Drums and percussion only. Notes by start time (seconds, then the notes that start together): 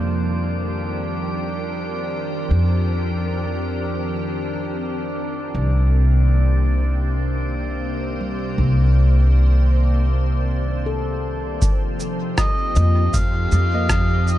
11.62 kick, shaker
12.00 shaker
12.38 kick, cross-stick, shaker
12.76 shaker
13.13 kick, shaker
13.52 shaker
13.89 kick, cross-stick, shaker
14.27 shaker